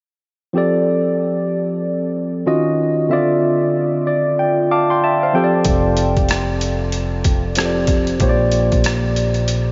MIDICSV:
0, 0, Header, 1, 4, 480
1, 0, Start_track
1, 0, Key_signature, -1, "major"
1, 0, Tempo, 638298
1, 411, Time_signature, 4, 2, 24, 8
1, 7308, End_track
2, 0, Start_track
2, 0, Title_t, "Tine electric piano"
2, 0, Program_c, 0, 4
2, 401, Note_on_c, 0, 53, 57
2, 410, Note_on_c, 0, 60, 50
2, 418, Note_on_c, 0, 67, 48
2, 426, Note_on_c, 0, 69, 51
2, 434, Note_on_c, 0, 74, 63
2, 568, Control_c, 0, 64, 127
2, 1817, Note_off_c, 0, 53, 0
2, 1822, Note_off_c, 0, 60, 0
2, 1826, Note_off_c, 0, 67, 0
2, 1830, Note_off_c, 0, 69, 0
2, 1834, Note_off_c, 0, 74, 0
2, 1849, Note_on_c, 0, 51, 51
2, 1853, Note_on_c, 0, 61, 52
2, 1857, Note_on_c, 0, 65, 52
2, 1859, Note_on_c, 0, 66, 51
2, 1860, Control_c, 0, 64, 0
2, 1862, Note_on_c, 0, 75, 59
2, 1991, Control_c, 0, 64, 127
2, 2323, Note_on_c, 0, 50, 58
2, 2330, Note_off_c, 0, 51, 0
2, 2332, Note_off_c, 0, 61, 0
2, 2332, Note_on_c, 0, 60, 50
2, 2334, Note_off_c, 0, 65, 0
2, 2335, Note_off_c, 0, 66, 0
2, 2337, Note_off_c, 0, 75, 0
2, 2338, Note_on_c, 0, 76, 52
2, 2340, Control_c, 0, 64, 0
2, 2347, Note_on_c, 0, 65, 52
2, 2354, Note_on_c, 0, 74, 66
2, 2490, Control_c, 0, 64, 127
2, 3051, Note_off_c, 0, 74, 0
2, 3060, Note_on_c, 0, 74, 58
2, 3279, Note_off_c, 0, 74, 0
2, 3303, Note_on_c, 0, 79, 57
2, 3521, Note_off_c, 0, 79, 0
2, 3545, Note_on_c, 0, 86, 55
2, 3546, Note_on_c, 0, 77, 59
2, 3547, Note_on_c, 0, 81, 45
2, 3673, Note_off_c, 0, 86, 0
2, 3674, Note_off_c, 0, 81, 0
2, 3687, Note_on_c, 0, 84, 56
2, 3693, Note_on_c, 0, 79, 49
2, 3762, Note_off_c, 0, 77, 0
2, 3774, Note_off_c, 0, 84, 0
2, 3777, Note_off_c, 0, 79, 0
2, 3783, Note_off_c, 0, 76, 0
2, 3787, Note_on_c, 0, 81, 56
2, 3792, Note_on_c, 0, 76, 47
2, 3914, Note_off_c, 0, 81, 0
2, 3917, Note_off_c, 0, 76, 0
2, 3933, Note_on_c, 0, 77, 49
2, 3934, Note_on_c, 0, 72, 42
2, 3977, Note_off_c, 0, 50, 0
2, 3982, Note_off_c, 0, 60, 0
2, 3989, Note_off_c, 0, 65, 0
2, 4009, Note_on_c, 0, 53, 62
2, 4017, Note_on_c, 0, 60, 55
2, 4021, Control_c, 0, 64, 0
2, 4022, Note_on_c, 0, 79, 57
2, 4027, Note_on_c, 0, 67, 57
2, 4031, Note_off_c, 0, 72, 0
2, 4033, Note_on_c, 0, 69, 60
2, 4040, Note_on_c, 0, 72, 52
2, 4083, Note_off_c, 0, 72, 0
2, 4090, Note_on_c, 0, 74, 69
2, 4151, Note_off_c, 0, 77, 0
2, 4170, Control_c, 0, 64, 127
2, 4241, Note_off_c, 0, 79, 0
2, 5660, Note_off_c, 0, 53, 0
2, 5664, Note_off_c, 0, 60, 0
2, 5669, Note_off_c, 0, 67, 0
2, 5672, Note_off_c, 0, 69, 0
2, 5690, Note_on_c, 0, 53, 45
2, 5695, Note_on_c, 0, 60, 43
2, 5698, Note_on_c, 0, 67, 41
2, 5701, Note_off_c, 0, 74, 0
2, 5705, Note_on_c, 0, 69, 41
2, 5707, Note_on_c, 0, 72, 38
2, 5754, Note_on_c, 0, 74, 50
2, 5757, Note_off_c, 0, 72, 0
2, 6159, Note_on_c, 0, 46, 58
2, 6167, Note_off_c, 0, 67, 0
2, 6167, Note_on_c, 0, 58, 54
2, 6171, Note_off_c, 0, 53, 0
2, 6174, Note_off_c, 0, 60, 0
2, 6176, Note_on_c, 0, 67, 55
2, 6178, Note_off_c, 0, 69, 0
2, 6180, Control_c, 0, 64, 0
2, 6182, Note_on_c, 0, 72, 51
2, 6190, Note_on_c, 0, 73, 54
2, 6203, Note_off_c, 0, 74, 0
2, 6235, Note_on_c, 0, 74, 66
2, 6238, Note_off_c, 0, 73, 0
2, 6296, Control_c, 0, 64, 127
2, 7308, Note_off_c, 0, 46, 0
2, 7308, Note_off_c, 0, 58, 0
2, 7308, Note_off_c, 0, 67, 0
2, 7308, Note_off_c, 0, 72, 0
2, 7308, Note_off_c, 0, 74, 0
2, 7308, End_track
3, 0, Start_track
3, 0, Title_t, "Fretless electric bass"
3, 0, Program_c, 1, 35
3, 4260, Note_on_c, 1, 29, 61
3, 6146, Note_off_c, 1, 29, 0
3, 6180, Note_on_c, 1, 34, 63
3, 7308, Note_off_c, 1, 34, 0
3, 7308, End_track
4, 0, Start_track
4, 0, Title_t, "Drums"
4, 4245, Note_on_c, 9, 42, 59
4, 4252, Note_on_c, 9, 36, 85
4, 4321, Note_off_c, 9, 42, 0
4, 4327, Note_off_c, 9, 36, 0
4, 4487, Note_on_c, 9, 42, 47
4, 4562, Note_off_c, 9, 42, 0
4, 4637, Note_on_c, 9, 42, 24
4, 4639, Note_on_c, 9, 36, 71
4, 4712, Note_off_c, 9, 42, 0
4, 4715, Note_off_c, 9, 36, 0
4, 4727, Note_on_c, 9, 42, 61
4, 4743, Note_on_c, 9, 37, 89
4, 4802, Note_off_c, 9, 42, 0
4, 4819, Note_off_c, 9, 37, 0
4, 4972, Note_on_c, 9, 42, 54
4, 5047, Note_off_c, 9, 42, 0
4, 5207, Note_on_c, 9, 42, 59
4, 5282, Note_off_c, 9, 42, 0
4, 5448, Note_on_c, 9, 42, 52
4, 5452, Note_on_c, 9, 36, 77
4, 5523, Note_off_c, 9, 42, 0
4, 5527, Note_off_c, 9, 36, 0
4, 5681, Note_on_c, 9, 42, 59
4, 5704, Note_on_c, 9, 37, 86
4, 5756, Note_off_c, 9, 42, 0
4, 5779, Note_off_c, 9, 37, 0
4, 5920, Note_on_c, 9, 42, 59
4, 5925, Note_on_c, 9, 36, 72
4, 5995, Note_off_c, 9, 42, 0
4, 6000, Note_off_c, 9, 36, 0
4, 6069, Note_on_c, 9, 42, 31
4, 6144, Note_off_c, 9, 42, 0
4, 6165, Note_on_c, 9, 42, 58
4, 6170, Note_on_c, 9, 36, 85
4, 6240, Note_off_c, 9, 42, 0
4, 6245, Note_off_c, 9, 36, 0
4, 6404, Note_on_c, 9, 42, 47
4, 6479, Note_off_c, 9, 42, 0
4, 6556, Note_on_c, 9, 42, 28
4, 6558, Note_on_c, 9, 36, 63
4, 6631, Note_off_c, 9, 42, 0
4, 6633, Note_off_c, 9, 36, 0
4, 6648, Note_on_c, 9, 42, 63
4, 6664, Note_on_c, 9, 37, 92
4, 6723, Note_off_c, 9, 42, 0
4, 6740, Note_off_c, 9, 37, 0
4, 6891, Note_on_c, 9, 42, 51
4, 6966, Note_off_c, 9, 42, 0
4, 7026, Note_on_c, 9, 42, 27
4, 7101, Note_off_c, 9, 42, 0
4, 7128, Note_on_c, 9, 42, 68
4, 7203, Note_off_c, 9, 42, 0
4, 7308, End_track
0, 0, End_of_file